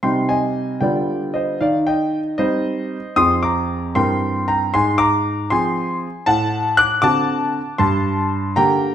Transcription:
0.03 0.80 C3 medium
0.03 0.78 G3 soft
0.03 0.79 C4 soft
0.03 0.79 D#4 soft
0.03 0.28 G5 medium
0.03 0.27 C6 medium
0.29 0.79 D#5 medium
0.29 0.78 G#5 medium
0.81 1.58 D3 soft
0.81 1.57 G3 soft
0.81 1.57 B3 soft
0.81 1.58 F4 soft
0.81 1.31 D5 medium
0.81 1.34 G5 medium
1.34 1.60 C5 soft
1.34 1.58 D#5 medium
1.61 2.37 D#3 medium
1.61 1.86 D5 medium
1.61 1.76 F5 medium
1.87 2.36 D#5 medium
1.87 2.18 G5 medium
2.38 2.96 G3 soft
2.38 2.96 C4 soft
2.38 2.96 D#4 soft
2.38 3.14 C5 medium
2.38 3.17 D#5 medium
3.16 3.94 F2 medium
3.16 3.92 F3 soft
3.16 3.92 C4 soft
3.16 3.93 G#4 soft
3.16 3.42 C6 medium
3.16 3.32 D#6 medium
3.43 3.93 A#5 medium
3.43 3.96 D6 medium
3.95 4.71 G2 medium
3.95 4.70 E3 soft
3.95 4.70 C4 soft
3.95 4.70 A#4 soft
3.95 4.45 G5 medium
3.95 4.48 C6 medium
4.48 4.72 G5 medium
4.48 4.71 A#5 medium
4.74 5.49 G#2 medium
4.74 4.99 G#5 medium
4.74 4.97 C6 medium
4.98 5.47 A#5 medium
4.98 5.50 D6 loud
5.50 6.06 F3 medium
5.50 6.06 C4 soft
5.50 6.06 G#4 medium
5.50 6.24 G#5 medium
5.50 5.96 C6 medium
6.26 7.01 A2 medium
6.26 6.74 F#5 medium
6.26 6.77 A5 medium
6.77 7.00 D6 medium
6.77 7.00 F#6 loud
7.02 7.58 D3 medium
7.02 7.58 C4 soft
7.02 7.58 F#4 medium
7.02 7.76 A5 medium
7.02 7.79 D6 loud
7.78 8.54 G2 medium
7.78 8.53 A5 medium
7.78 8.56 C6 medium
8.56 8.95 D3 medium
8.56 8.95 A#3 medium
8.56 8.95 G4 medium
8.56 8.95 G5 medium
8.56 8.95 A#5 medium

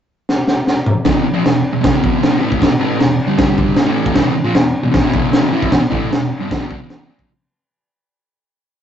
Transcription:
0.29 snare medium
0.48 snare medium
0.67 snare medium
0.86 mid tom medium
1.05 1.23 E2 loud
1.05 1.25 B2 medium
1.05 1.25 E3 loud
1.05 kick loud
1.05 snare loud
1.05 crash medium
1.25 muted distorted electric guitar stroke medium
1.34 1.43 A#2 medium
1.34 1.44 F3 medium
1.44 1.59 E2 medium
1.44 1.60 B2 medium
1.44 snare loud
1.44 crash medium
1.73 1.81 E2 medium
1.73 1.80 B2 medium
1.82 1.91 E2 medium
1.82 1.91 B2 medium
1.82 kick loud
1.82 snare loud
1.82 crash medium
1.92 2.41 E2 medium
1.92 2.39 B2 loud
1.92 2.39 E3 loud
2.04 kick loud
2.23 snare loud
2.23 crash medium
2.39 2.59 A2 medium
2.39 2.60 E3 loud
2.39 2.60 A3 loud
2.52 kick medium
2.60 2.70 E2 loud
2.60 2.70 B2 loud
2.60 kick loud
2.60 snare loud
2.60 crash medium
2.71 muted distorted electric guitar stroke medium
2.80 2.99 A2 medium
2.80 2.99 E3 loud
2.80 2.99 A3 loud
3.00 3.15 E2 medium
3.00 3.16 B2 medium
3.00 snare loud
3.00 crash medium
3.27 3.76 G2 medium
3.27 3.76 D3 medium
3.27 3.77 G3 medium
3.38 kick loud
3.38 snare loud
3.38 crash medium
3.58 kick loud
3.76 3.87 E2 medium
3.76 3.86 B2 medium
3.76 snare loud
3.76 crash medium
3.86 4.14 A2 loud
3.86 4.14 E3 loud
3.86 4.16 A3 loud
4.06 kick medium
4.14 4.33 E2 medium
4.14 4.34 B2 loud
4.14 4.35 E3 loud
4.14 kick loud
4.14 snare loud
4.14 crash medium
4.35 muted distorted electric guitar stroke medium
4.44 4.54 A#2 medium
4.44 4.54 F3 medium
4.55 4.70 E2 medium
4.55 4.71 B2 medium
4.55 snare loud
4.55 crash medium
4.83 4.90 E2 medium
4.83 4.91 B2 medium
4.91 5.01 E2 medium
4.91 5.02 B2 medium
4.91 kick loud
4.91 snare loud
4.91 crash medium
5.02 5.51 E2 medium
5.02 5.51 B2 medium
5.02 5.52 E3 loud
5.14 kick medium
5.33 snare loud
5.33 crash medium
5.52 5.71 A2 medium
5.52 5.71 E3 loud
5.52 5.72 A3 loud
5.62 kick medium
5.72 5.80 E2 medium
5.72 5.82 B2 loud
5.72 kick loud
5.72 snare loud
5.72 crash medium
5.82 muted distorted electric guitar stroke medium
5.90 6.10 A2 medium
5.90 6.10 E3 loud
5.90 6.10 A3 loud
5.90 kick medium
6.12 6.27 E2 medium
6.12 6.27 B2 medium
6.12 snare loud
6.12 crash medium
6.39 6.49 G2 medium
6.39 6.50 D3 loud
6.51 6.59 G2 medium
6.51 6.60 D3 medium
6.51 kick loud
6.51 snare loud
6.51 crash medium
6.60 6.69 E2 medium
6.60 6.69 B2 loud
6.70 6.79 D3 medium
6.70 6.79 A3 loud
6.70 kick loud
6.81 7.09 E2 loud
6.81 7.08 B2 loud
6.81 7.09 E3 loud
6.90 snare loud
6.90 crash medium
7.09 7.28 A#2 loud
7.09 7.28 F3 medium
7.09 7.28 A#3 loud
7.19 kick medium

